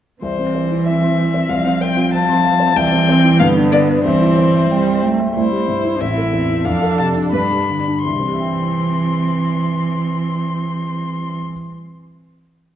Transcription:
0.22 C2 E3 C4 C5
0.39 C4
0.55 C5
0.71 E4
0.86 E5
1.02 C6
1.34 C5
1.49 C2 F3 F5
1.65 C4
1.81 C5 G5
1.97 F4
2.13 F5 A5
2.29 C6
2.45 F5
2.60 C5
2.76 C2 E3 C4 G5
2.93 C4
3.09 C5
3.24 E4
3.40 G2 D3 B3 F5
3.57 D4
3.72 B4 D5
3.89 D5
4.04 C2 E3 C4 C5
4.22 E4
4.38 C5
4.54 E5
4.69 G3 G5
4.87 C6
5.02 A3 G5
5.20 E5
5.35 C2 E4 C5
5.52 G4
5.68 G2
5.85 E4
5.99 A1 C4 E4 E5
6.17 A4
6.32 E2 C4
6.49 E4
6.64 F2 D4 A4 F5
6.82 A4
6.99 C3 A5
7.16 D4
7.32 G2 D4 B4 B5
7.51 G4
7.70 D3
7.88 D4
8.04 C2 E3 C4 C6
8.12 C3
8.20 C4
8.26 G4
8.33 E5
8.40 G5

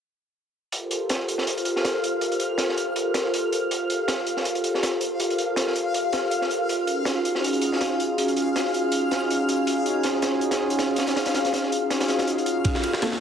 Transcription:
0.72 F4 G4 A4 A#4 C5 F5 F6, closed hi-hat
0.91 closed hi-hat
1.09 snare, closed hi-hat
1.28 F4 G4 A4 A#4 C5, closed hi-hat
1.38 snare
1.47 closed hi-hat
1.57 closed hi-hat
1.65 closed hi-hat
1.76 snare
1.85 snare, closed hi-hat
2.04 closed hi-hat
2.21 F4 G4 A4 A#4 C5, closed hi-hat
2.32 closed hi-hat
2.40 closed hi-hat
2.58 snare, closed hi-hat
2.69 snare
2.77 F4 G4 A4 A#4 C5, closed hi-hat
2.96 closed hi-hat
3.14 snare, closed hi-hat
3.34 closed hi-hat
3.52 closed hi-hat
3.71 F4 G4 A4 A#4 C5, closed hi-hat
3.90 closed hi-hat
4.08 snare, closed hi-hat
4.26 F4 G4 A4 A#4 C5, closed hi-hat
4.37 snare
4.45 closed hi-hat
4.55 closed hi-hat
4.64 closed hi-hat
4.74 snare
4.83 snare, closed hi-hat
5.01 closed hi-hat
5.20 F4 G4 A4 A#4 C5, closed hi-hat
5.30 closed hi-hat
5.38 closed hi-hat
5.56 snare, closed hi-hat
5.67 snare
5.76 F4 G4 A4 A#4 C5, closed hi-hat
5.94 closed hi-hat
6.13 snare, closed hi-hat
6.31 closed hi-hat
6.42 snare
6.51 closed hi-hat
6.69 C#4 D#4 F4 F#4 G#4, closed hi-hat
6.87 closed hi-hat
7.05 snare, closed hi-hat
7.25 C#4 D#4 F4 F#4 G#4, closed hi-hat
7.35 snare
7.44 closed hi-hat
7.53 closed hi-hat
7.61 closed hi-hat
7.72 snare
7.81 snare, closed hi-hat
8.00 closed hi-hat
8.18 C#4 D#4 F4 F#4 G#4, closed hi-hat
8.28 closed hi-hat
8.36 closed hi-hat
8.56 snare, closed hi-hat
8.65 snare
8.74 C#4 D#4 F4 F#4 G#4, closed hi-hat
8.92 closed hi-hat
9.11 snare, closed hi-hat
9.30 closed hi-hat
9.49 closed hi-hat
9.67 C#4 D#4 F4 F#4 G#4, closed hi-hat
9.86 closed hi-hat
10.03 snare, closed hi-hat
10.22 C#4 D#4 F4 F#4 G#4, snare, closed hi-hat
10.41 closed hi-hat
10.51 snare, closed hi-hat
10.70 closed hi-hat
10.79 snare, closed hi-hat
10.96 snare, closed hi-hat
11.07 snare, closed hi-hat
11.16 C#4 D#4 F4 F#4 G#4, snare, closed hi-hat
11.26 snare, closed hi-hat
11.34 snare, closed hi-hat
11.45 snare, closed hi-hat
11.53 snare, closed hi-hat
11.63 snare
11.72 C#4 D#4 F4 F#4 G#4, closed hi-hat
11.90 snare, closed hi-hat
12.00 snare, closed hi-hat
12.08 snare, closed hi-hat
12.19 snare, closed hi-hat
12.27 closed hi-hat
12.38 closed hi-hat
12.46 closed hi-hat
12.64 F4 G4 A4 A#4 C5 F5 F6, kick, closed hi-hat, ride
12.75 snare
12.83 closed hi-hat, ride
12.94 snare
13.02 A#3 C4 D4 F4 A4, snare, closed hi-hat, ride
13.12 snare

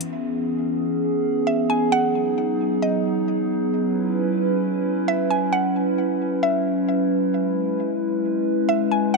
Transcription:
Already playing: E4
0.01 closed hi-hat
0.12 E3 B3 C#4 G#4
1.47 E5
1.70 G#5
1.92 F#3 D#4 F#5
2.82 D#5
3.73 C#4 E4 B4
5.08 E5
5.31 G#5
5.53 F#5
6.43 E5
7.34 G#3
8.69 E5
8.91 G#5

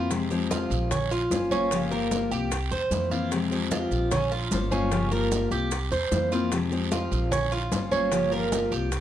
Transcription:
Already playing: F2 E3 A#3 F4
0.10 C3 F3 G#3 C4 G4, high bongo, high conga, long guiro, maracas
0.30 F3 G#3 C4 G4, high bongo, high conga, maracas
0.51 F4, high bongo, high conga, short guiro, maracas
0.70 A#1, high bongo, high conga, short guiro, maracas
0.90 C#4, muted steel-string acoustic guitar stroke, high bongo, high conga, low conga, long guiro, maracas
1.11 F4, high bongo, high conga, maracas
1.30 G1 A#3 C#4 F4 C5, high bongo, low bongo, high conga, short guiro, maracas
1.51 A#3 C#4 F4 C5, high conga, short guiro, maracas
1.71 C#3 F3 A#3 F4 G4, high bongo, high conga, long guiro, maracas
1.91 F3 A#3 F4 G4 A#4, high bongo, high conga, maracas
2.11 high bongo, high conga, short guiro, maracas
2.31 C2 G4, high bongo, short guiro, maracas
2.51 muted steel-string acoustic guitar stroke, high bongo, high conga, long guiro, maracas
2.71 E2 C5, high bongo, high conga, maracas
2.91 F2 E3 A#3 C4 E4, high bongo, low bongo, high conga, short guiro, maracas
3.11 E3 A#3 C4 E4 F4, high conga, short guiro, maracas
3.31 C3 F3 G#3 C4 G4, high bongo, high conga, long guiro, maracas
3.51 F3 G#3 C4 G4, high bongo, high conga, maracas
3.71 F4, high bongo, high conga, short guiro, maracas
3.91 A#1, high bongo, high conga, short guiro, maracas
4.11 C#4, muted steel-string acoustic guitar stroke, high bongo, high conga, low conga, long guiro, maracas
4.31 F4, high bongo, high conga, maracas
4.51 G1 A#3 C#4 F4 C5, high bongo, low bongo, high conga, short guiro, maracas
4.71 A#3 C#4 F4 C5, high conga, short guiro, maracas
4.91 C#3 F3 A#3 F4 G4, high bongo, long guiro, maracas
5.11 F3 A#3 F4 G4 A#4, high bongo, high conga, maracas
5.32 high bongo, high conga, short guiro, maracas
5.51 C2 G4, high bongo, short guiro, maracas
5.71 muted steel-string acoustic guitar stroke, high bongo, high conga, long guiro, maracas
5.91 E2 C5, high bongo, high conga, maracas
6.11 F2 E3 A#3 C4 E4, high bongo, low bongo, high conga, short guiro, maracas
6.31 E3 A#3 C4 E4 F4, high conga, short guiro, maracas
6.52 C3 F3 G#3 C4 G4, high bongo, high conga, long guiro, maracas
6.71 F3 G#3 C4 G4, high bongo, high conga, maracas
6.92 F4, high bongo, high conga, short guiro, maracas
7.11 A#1, high bongo, high conga, short guiro, maracas
7.32 C#4, muted steel-string acoustic guitar stroke, high bongo, high conga, low conga, long guiro, maracas
7.52 F4, high bongo, high conga, maracas
7.71 G1 A#3 C#4 F4 C5, high bongo, low bongo, high conga, short guiro, maracas
7.91 A#3 C#4 F4 C5, high conga, short guiro, maracas
8.11 C#3 F3 A#3 F4 G4, high bongo, high conga, long guiro, maracas
8.31 F3 A#3 F4 G4 A#4, high bongo, high conga, maracas
8.52 high bongo, high conga, short guiro, maracas
8.72 C2 G4, high bongo, short guiro, maracas
8.92 muted steel-string acoustic guitar stroke, high bongo, high conga, long guiro, maracas

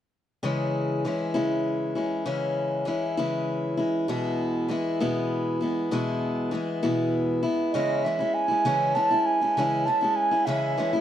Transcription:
0.43 C#3 E3 G#3 C#4 E4
1.05 E3 G#3 C#4 E4
1.34 C#3 E3 G#3 C#4 E4
1.95 G#3 C#4 E4
2.26 C#3 E3 G#3 C#4 E4
2.85 E3 G#3 C#4 E4
3.17 C#3 E3 G#3 C#4 E4
3.77 G#3 C#4 E4
4.08 B2 E3 G#3 B3 E4
4.69 E3 G#3 B3 E4
5.00 B2 E3 G#3 B3 E4
5.61 G#3 B3 E4
5.91 B2 E3 G#3 B3 E4
6.51 E3 G#3 B3 E4
6.83 B2 E3 G#3 B3 E4
7.43 G#3 B3 E4
7.72 C#3 E3 G#3 C#4 E4 D#5
8.03 E3 G#3 C#4 E5
8.07 E4
8.19 G#3 C#4 E4
8.34 G#5
8.48 G#3 C#4 E4
8.65 C#3 E3 G#3 C#4 E4
8.95 E3 G#3 C#4 E4 A5
9.11 G#3 C#4 E4
9.26 G#5
9.41 G#3 C#4 E4
9.57 C#3 E3 G#3 C#4 E4
9.85 E3 G#3 C#4 A5
9.89 E4
10.01 G#3 C#4 E4
10.16 G#5
10.31 G#3 C#4 E4
10.46 C#3 E3 G#3 C#4 E4 E5
10.77 E3 G#3 C#4 E4
10.93 G#3 C#4 E4

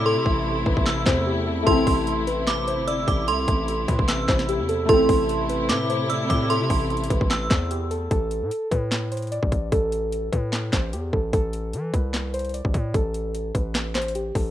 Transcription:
Already playing: A2 C3 A3 C4 E4
0.06 A4 C6
0.16 C3
0.26 A1, kick
0.66 A1 B4, kick
0.77 A1, kick
0.86 E6, snare, clap
1.06 E2 C5, kick, snare, clap
1.27 G4
1.47 A4
1.63 A3 E4 C6
1.67 A1 C4 A4, kick, closed hi-hat
1.87 A1, kick, open hi-hat
2.07 closed hi-hat
2.27 B4, closed hi-hat
2.47 D6, snare, clap, closed hi-hat
2.68 C5, closed hi-hat
2.78 G1
2.87 D5 E6, closed hi-hat
3.08 A1 D6, kick, closed hi-hat
3.28 C2 A4 C6, closed hi-hat
3.48 A1, kick, closed hi-hat
3.68 closed hi-hat
3.88 A2 B4, kick, closed hi-hat
3.99 A1, kick
4.08 E6, snare, clap, closed hi-hat
4.28 A1 C5, kick, snare, clap
4.39 snare
4.49 G4, closed hi-hat
4.59 E2
4.69 A4, closed hi-hat
4.85 A1 C3 A3 E4 A4 C6, kick, closed hi-hat
4.93 C4
5.09 A1, kick, open hi-hat
5.29 closed hi-hat
5.49 B4, closed hi-hat
5.69 A2 D6, snare, clap, closed hi-hat
5.89 C5, closed hi-hat
6.10 D5 E6, closed hi-hat
6.30 A2 D6, kick, closed hi-hat
6.50 A4 C6, closed hi-hat
6.61 C3
6.70 A1, kick, open hi-hat
6.90 closed hi-hat
6.97 closed hi-hat
7.04 closed hi-hat
7.10 A1 B4, kick, closed hi-hat
7.21 A1, kick
7.31 E6, snare, clap, closed hi-hat
7.51 E2 C5, kick, snare, clap
7.71 G4, closed hi-hat
7.91 A4, closed hi-hat
8.11 A1 A4, kick, closed hi-hat
8.31 closed hi-hat
8.42 A2
8.51 closed hi-hat
8.71 A2 B4, kick, closed hi-hat
8.92 snare, clap, closed hi-hat
9.12 C5, closed hi-hat
9.17 closed hi-hat
9.22 closed hi-hat
9.27 closed hi-hat
9.32 D5, closed hi-hat
9.43 A1, kick
9.52 A1, kick, closed hi-hat
9.72 A1 A4, kick, closed hi-hat
9.92 closed hi-hat
10.12 closed hi-hat
10.32 A2 B4, kick, closed hi-hat
10.53 snare, clap, closed hi-hat
10.73 A1 C5, kick, snare, clap, closed hi-hat
10.93 E2 G4, closed hi-hat
11.13 A1 A4, kick
11.33 A1 A4, kick, closed hi-hat
11.53 closed hi-hat
11.73 E3, closed hi-hat
11.94 C2 B4, kick, closed hi-hat
12.14 snare, clap, closed hi-hat
12.34 C5, closed hi-hat
12.39 closed hi-hat
12.45 closed hi-hat
12.49 closed hi-hat
12.54 D5, closed hi-hat
12.65 A1, kick
12.74 A2, kick, closed hi-hat
12.94 A1 A4, kick, closed hi-hat
13.14 closed hi-hat
13.35 closed hi-hat
13.55 A1 B4, kick, closed hi-hat
13.75 snare, clap, closed hi-hat
13.95 C5, snare, clap, closed hi-hat
14.02 closed hi-hat
14.08 closed hi-hat
14.15 G4, closed hi-hat
14.35 A1 A4, kick, open hi-hat

